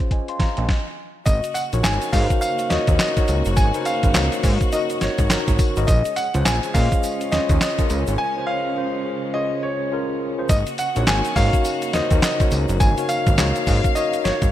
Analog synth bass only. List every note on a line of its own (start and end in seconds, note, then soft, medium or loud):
0.40 0.47 A#1 soft
0.58 0.67 A#1 medium
1.27 1.41 G#1 loud
1.73 1.82 A#1 medium
1.85 1.99 G#1 medium
2.13 2.27 G#2 medium
2.71 2.78 D#2 medium
2.88 2.97 D#2 medium
3.29 3.43 C#2 medium
3.46 3.56 F#1 loud
3.57 3.72 G#1 loud
4.04 4.13 G#1 medium
4.15 4.29 C#2 medium
4.44 4.58 G#2 loud
5.02 5.09 G#1 soft
5.19 5.28 G#1 medium
5.30 5.37 G#1 medium
5.48 5.57 G#1 medium
5.77 5.86 G#1 medium
5.88 6.03 A#1 loud
6.35 6.44 C#2 loud
6.46 6.60 A#1 loud
6.75 6.89 A#2 loud
7.33 7.39 D#2 soft
7.50 7.59 D#2 loud
7.90 8.05 C#2 medium
8.08 8.17 G#1 loud
10.50 10.64 G#1 loud
10.96 11.06 A#1 medium
11.08 11.22 G#1 loud
11.36 11.51 G#2 loud
11.94 12.01 D#2 soft
12.11 12.21 D#2 medium
12.52 12.66 C#2 medium
12.69 12.79 F#1 loud
12.81 12.95 G#1 loud
13.27 13.36 G#1 medium
13.38 13.53 C#2 loud
13.67 13.81 G#2 loud
14.25 14.32 G#1 medium
14.42 14.52 G#1 medium